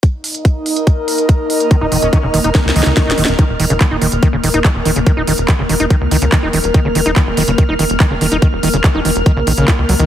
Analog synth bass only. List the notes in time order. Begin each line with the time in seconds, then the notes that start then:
1.81 D#1
1.92 D#1
2.02 D#1
2.23 E1
2.34 E1
2.44 E1
2.65 C#2
2.76 C#2
2.86 C#2
3.07 D#1
3.18 D#1
3.28 D#1
3.49 D#1
3.60 D#1
3.70 D#1
3.91 D#1
4.02 D#1
4.12 D#1
4.33 D#1
4.44 D#1
4.54 D#1
4.75 D#1
4.86 D#1
4.96 D#1
5.17 D#1
5.28 D#1
5.38 D#1
5.59 E1
5.69 E1
5.80 E1
6.01 C#2
6.11 C#2
6.22 C#2
6.43 D#1
6.53 D#1
6.64 D#1
6.85 D#1
6.95 D#1
7.06 D#1
7.27 D#1
7.37 D#1
7.48 D#1
7.69 D#1
7.79 D#1
7.90 D#1
8.11 D#1
8.21 D#1
8.32 D#1
8.53 D#1
8.63 D#1
8.74 D#1
8.95 E1
9.05 E1
9.16 E1
9.37 A#1
9.47 A#1
9.58 A#1
9.79 C#2
9.89 C#2
10.00 C#2